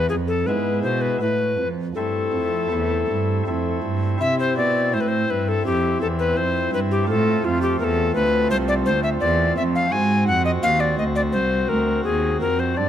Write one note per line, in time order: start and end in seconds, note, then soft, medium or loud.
0.00 0.12 E2 medium
0.09 0.48 F2 soft
0.09 0.44 F2 soft
0.09 0.15 G#4 medium
0.28 0.48 A4 medium
0.46 0.83 G#2 medium
0.46 0.81 G#2 soft
0.46 1.18 G#3 soft
0.46 1.18 B3 soft
0.46 1.18 E4 soft
0.46 0.82 B4 medium
0.83 1.21 B2 soft
0.83 1.18 B2 soft
0.83 1.03 C5 medium
1.01 1.20 B4 medium
1.20 1.58 A2 soft
1.20 1.56 A2 soft
1.20 1.68 B4 medium
1.59 1.92 F2 soft
1.59 1.95 F2 soft
1.95 2.32 G2 soft
1.95 2.30 G2 soft
1.95 2.67 A3 soft
1.95 2.68 C4 soft
1.95 2.68 E4 soft
1.95 3.80 A4 medium
2.33 2.70 F2 soft
2.33 2.67 F2 soft
2.71 3.08 E2 soft
2.71 3.05 E2 soft
2.71 3.43 A3 soft
2.71 3.43 C4 soft
2.71 3.43 E4 soft
3.09 3.46 G2 soft
3.09 3.43 G2 soft
3.46 3.83 F2 soft
3.46 3.80 F2 soft
3.46 4.17 A3 soft
3.46 4.16 C4 soft
3.46 4.17 E4 soft
3.84 4.17 G2 soft
3.84 4.20 G2 soft
4.18 4.59 C3 soft
4.18 4.54 C3 soft
4.18 7.04 C4 soft
4.18 7.04 E4 soft
4.18 4.38 E5 medium
4.40 4.57 C5 medium
4.57 4.90 B2 soft
4.57 4.96 B2 medium
4.57 4.95 D5 medium
4.94 5.27 A2 soft
4.94 5.30 A2 medium
4.94 5.02 C5 medium
5.01 5.10 B4 medium
5.08 5.32 C5 medium
5.30 5.62 G2 soft
5.30 5.66 G2 medium
5.30 5.50 B4 medium
5.49 5.65 A4 medium
5.66 5.98 F2 soft
5.66 6.01 F2 medium
5.66 6.01 G4 medium
6.01 6.33 E2 soft
6.01 6.39 E2 soft
6.01 6.07 A4 medium
6.19 6.38 B4 medium
6.37 6.69 F2 soft
6.37 6.73 F2 medium
6.37 6.73 C5 medium
6.73 7.05 G2 soft
6.73 7.09 G2 medium
6.73 6.80 B4 medium
6.91 7.08 G4 medium
7.04 9.85 A3 soft
7.04 9.86 C4 soft
7.04 9.87 F4 soft
7.09 7.41 A2 medium
7.09 7.44 A2 medium
7.09 7.46 A4 medium
7.45 7.77 F2 medium
7.45 7.80 F2 medium
7.45 7.62 F4 medium
7.62 7.79 G4 medium
7.80 8.12 E2 medium
7.80 8.15 E2 medium
7.80 7.85 A#4 medium
7.84 8.15 A4 medium
8.15 8.47 D2 medium
8.15 8.53 D2 medium
8.15 8.50 B4 medium
8.51 8.83 C2 medium
8.51 8.89 C2 medium
8.51 8.57 C5 medium
8.68 8.74 D5 medium
8.86 9.18 D2 soft
8.86 9.22 D2 medium
8.86 9.03 C5 medium
9.03 9.09 E5 medium
9.20 9.53 E2 medium
9.20 9.56 E2 medium
9.20 9.55 D5 medium
9.57 9.89 F2 soft
9.57 9.92 F2 medium
9.57 9.63 E5 medium
9.75 9.94 F5 medium
9.89 10.24 G#2 medium
9.89 10.30 G#2 medium
9.89 12.73 C4 soft
9.89 12.74 F#4 soft
9.89 10.27 G#5 medium
10.27 10.63 F2 medium
10.27 10.60 F2 soft
10.27 10.45 F#5 medium
10.45 10.51 D#5 medium
10.63 10.98 D#2 medium
10.63 10.95 D#2 soft
10.63 10.82 F5 medium
10.80 10.98 D5 medium
10.98 11.30 D2 medium
10.98 11.36 D2 medium
10.98 11.04 D#5 medium
11.16 11.22 D5 medium
11.32 11.69 C2 medium
11.32 11.66 C2 soft
11.32 11.70 C5 medium
11.69 12.02 D2 soft
11.69 12.05 D2 medium
11.69 12.04 A#4 medium
12.04 12.38 D#2 soft
12.04 12.42 D#2 medium
12.04 12.40 G#4 medium
12.41 12.75 F2 soft
12.41 12.80 F2 medium
12.41 12.61 A#4 medium
12.60 12.79 C5 medium
12.75 12.89 G2 soft
12.75 12.89 G2 medium
12.75 12.89 C4 soft
12.75 12.89 D4 soft
12.75 12.89 D5 medium